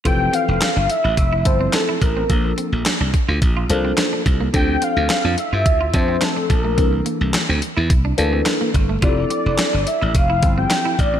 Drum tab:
HH |xxxxxxxx|xxxxxxxx|xxxxxxxx|xxxxxxxx|
CP |--x---x-|--x---x-|--x---x-|--x---x-|
SD |--o---o-|--o---o-|--o---o-|--o---o-|
BD |o---oo-o|o--oo--o|o---oo-o|o---o--o|

HH |xxxxxxxx|
CP |--x---x-|
SD |--o---o-|
BD |o---oo-o|